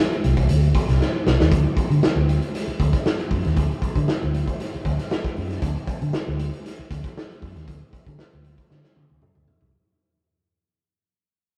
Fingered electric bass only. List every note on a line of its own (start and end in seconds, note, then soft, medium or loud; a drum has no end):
0.25 0.46 C2 medium
0.50 0.71 D2 medium
0.89 0.99 C2 medium
1.27 1.38 C2 loud
1.41 1.50 D#2 medium
1.52 1.63 D2 loud
1.77 muted fingered electric bass stroke soft
1.90 2.01 D3 loud
2.03 muted fingered electric bass stroke soft
2.16 2.38 D2 medium
2.67 muted fingered electric bass stroke soft
2.80 2.91 D2 medium
3.31 3.43 F#2 loud
3.46 3.57 D#2 medium
3.57 3.68 D2 loud
3.82 muted fingered electric bass stroke soft
3.96 4.06 D3 loud
4.09 muted fingered electric bass stroke soft
4.23 4.44 D2 medium
4.74 muted fingered electric bass stroke soft
4.85 4.96 D2 loud
5.37 5.59 F#2 loud
5.62 5.74 D2 loud
5.87 muted fingered electric bass stroke soft
6.02 6.12 D3 loud
6.15 muted fingered electric bass stroke medium
6.28 6.49 D2 medium
6.79 muted fingered electric bass stroke soft
6.91 7.02 D2 medium
7.43 7.54 F#2 loud
7.56 7.66 D#2 medium
7.68 7.79 D2 loud
7.93 muted fingered electric bass stroke soft
8.07 8.17 D3 loud
8.19 muted fingered electric bass stroke soft
8.33 8.54 D2 medium
8.71 8.82 D3 medium
8.96 9.07 D3 loud
9.10 9.20 D2 loud
9.22 9.33 F#2 loud
9.36 9.46 D2 medium
9.61 9.71 C2 medium